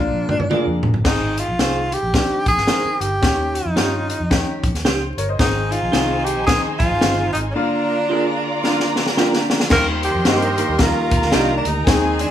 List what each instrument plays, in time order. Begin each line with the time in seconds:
Already playing: fingered electric bass A#1, upright piano D3 A#3 F4, tenor saxophone D4
0.12 fingered electric bass A#2
0.29 fingered electric bass G#2, mid tom
0.40 fingered electric bass G2, mid tom
0.50 upright piano D3 A#3 G#4, clean electric guitar F4 A#4 D5, mid tom
0.67 fingered electric bass F2
0.83 fingered electric bass F1, floor tom
0.94 fingered electric bass G1, floor tom
1.04 fingered electric bass G#1, upright piano D#3 C4 G#4, tenor saxophone D#4, kick, snare, crash
1.37 tenor saxophone F4, closed hi-hat
1.48 fingered electric bass A#1
1.59 fingered electric bass C2, upright piano D#3 C4 G#4, clean electric guitar D#4 G#4 C5, snare, closed hi-hat
1.92 tenor saxophone G4, closed hi-hat
2.03 fingered electric bass A#1
2.14 upright piano D#3 C4 D4, kick, snare, closed hi-hat
2.46 fingered electric bass A#1, tenor saxophone G#4, kick, closed hi-hat
2.57 fingered electric bass G#1, snare
2.67 upright piano D#3 C4 A#4, clean electric guitar D#4 G#4 C5, snare, closed hi-hat
2.85 muted fingered electric bass stroke
3.00 fingered electric bass G1, tenor saxophone G4, closed hi-hat
3.22 fingered electric bass D#2, upright piano D#3 C#4 G4, kick, snare, closed hi-hat
3.55 tenor saxophone D#4, closed hi-hat
3.66 fingered electric bass F2
3.75 fingered electric bass G2, upright piano D#3 C#4 F4, clean electric guitar D#4 G4 C#5, snare, closed hi-hat
4.10 closed hi-hat
4.20 fingered electric bass F2
4.30 upright piano D#3 C#4 G4, kick, snare, closed hi-hat
4.63 fingered electric bass F2, kick, closed hi-hat
4.74 fingered electric bass D#2, snare, closed hi-hat
4.85 fingered electric bass C#2, clean electric guitar D#4 G4 C#5, upright piano C5, snare, closed hi-hat
5.17 fingered electric bass G1, upright piano A#4 C#5, closed hi-hat
5.29 upright piano C5 D#5
5.38 fingered electric bass G#1, tonewheel organ D#3 C4 G#4, upright piano D#3 C4 G#4, violin section D#4 C5 G#5, tenor saxophone D#4, kick, snare, closed hi-hat
5.71 tenor saxophone F4, closed hi-hat
5.82 fingered electric bass A#1
5.92 fingered electric bass C2, upright piano D#3 C4 G#4, clean electric guitar D#4 G#4 C5, snare, closed hi-hat
6.24 tenor saxophone G4, closed hi-hat
6.36 fingered electric bass A#1
6.46 upright piano D#3 C4 G#4, tenor saxophone G#4, kick, snare, closed hi-hat
6.79 fingered electric bass A#1, tenor saxophone F4, kick, closed hi-hat
6.91 fingered electric bass G#1
7.01 fingered electric bass G1, upright piano D#3 C4 F4, clean electric guitar D#4 G#4 C5, snare, closed hi-hat
7.33 fingered electric bass G#1, tenor saxophone D#4, closed hi-hat
7.50 tenor saxophone C#4 D4
7.55 upright piano D3 A#3 F4, tonewheel organ D3 A#3 F4, violin section F4 D5 A#5
7.88 saxophone section D3 A#3 F4
8.09 upright piano D3 A#3 G#4, clean electric guitar F4 A#4 D5
8.64 saxophone section D3 A#3 F4, upright piano D3 A#3 D4, snare
8.80 snare
8.96 snare
9.07 snare
9.17 upright piano D3 A#3 G4, clean electric guitar F4 A#4 D5, snare
9.33 snare
9.50 snare
9.60 snare
9.70 fingered electric bass D#2, tonewheel organ D#3 A#3 G4, upright piano D#3 G3 A#3 G4, saxophone section G3 D#4 A#4, tenor saxophone A#4, violin section C5 C6, kick, snare, crash
10.03 tenor saxophone G4, closed hi-hat
10.15 fingered electric bass F2
10.25 fingered electric bass G2, upright piano D#3 G3 A#3 C4, clean electric guitar G4 A#4 D#5, tenor saxophone G4, snare, closed hi-hat
10.42 closed hi-hat
10.58 upright piano D#3 G3 A#3 G4, closed hi-hat
10.68 fingered electric bass D#2
10.79 upright piano D#3 G3 A#3 A#4, tenor saxophone F4, violin section A#4 A#5, kick, snare, closed hi-hat
11.11 fingered electric bass D#2, kick, closed hi-hat
11.22 fingered electric bass D2, snare
11.32 fingered electric bass C2, upright piano D#3 G3 A#3 D4, clean electric guitar G4 A#4 D#5, snare, closed hi-hat
11.57 tenor saxophone D4
11.65 fingered electric bass D2, tenor saxophone D#4, closed hi-hat
11.86 fingered electric bass D#2, upright piano D#3 G#3 C4 G#4, saxophone section D#3 C4 G#4, tonewheel organ G#3 C4, violin section G#4 G#5, kick, snare, closed hi-hat
12.19 tenor saxophone D4, closed hi-hat